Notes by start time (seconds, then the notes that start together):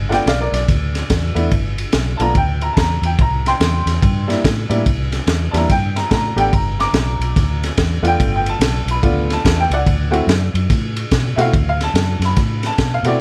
Already playing: G1
0.09 A3 B3 D4 F4 D5 F#5 G5, snare, ride
0.26 B1 D5 F5, snare, ride
0.40 A#4 D5
0.52 B1 D5, snare, ride
0.68 D2, kick, snare, ride
0.95 snare, ride
1.10 E2, kick, snare, ride
1.35 E2 A3 B3 D4 E4, ride
1.51 G1, kick, ride
1.78 ride
1.92 B1, snare, ride
2.17 B1 A3 B3 D4 F4 A5, ride
2.21 A#5
2.35 D2 G5, kick, ride
2.61 A#5, ride
2.73 E2 A5, kick
2.77 A#5, snare, ride
3.02 E2 G5, ride
3.19 C2 A#5, kick, ride
3.46 G5 C6, snare, ride
3.60 E2, snare, ride
3.86 E2, snare, ride
4.02 G2, kick, ride
4.28 G3 A#3 D4 E4, snare, ride
4.44 A2, kick, snare, ride
4.69 A2 G3 A#3 D4 E4, ride
4.86 C2, kick, ride
5.12 snare, ride
5.27 E2, snare, ride
5.51 E2 G3 A#3 D4 E4 A5, snare, ride
5.56 A#5
5.70 G2 G5, kick, snare, ride
5.96 A#5, snare, ride
6.09 A2 A5, kick, snare, ride
6.13 A#5
6.36 A1 A3 B3 D4 G4 G5, ride
6.53 G1 A#5, kick, ride
6.80 A#5 D6, snare, ride
6.93 B1, snare, ride
7.20 B1, ride
7.36 D2, kick, snare, ride
7.63 snare, ride
7.78 E2, kick, snare, ride
8.02 E2 A3 B3 D4 F4 F#5, ride
8.07 G5
8.20 G1, kick, ride
8.36 G5
8.46 A5, ride
8.59 B1, snare, ride
8.86 B1, ride
8.91 B5
9.03 D2 A3 B3 D4 F4, kick, ride
9.30 A5, snare, ride
9.45 E2, kick, snare, ride
9.60 G5
9.70 C#2 D5 F#5, ride
9.86 D2, kick, ride
10.11 A3 C4 E4 F#4, ride
10.27 F#2, snare, ride
10.54 F#2, ride
10.70 A2, kick, snare, ride
10.96 ride
11.11 B2, kick, snare, ride
11.36 B2 A3 C4 E4 F#4 E5, ride
11.41 F5
11.53 D2, kick, ride
11.69 F5
11.81 A5, snare, ride
11.94 F#2, snare, ride
12.20 F#2, snare, ride
12.25 B5
12.36 A2, kick, snare, ride
12.63 A5, snare, ride
12.78 B2, kick, snare, ride
12.94 F5
13.03 B2 A3 C4 E4 F#4, ride
13.08 D5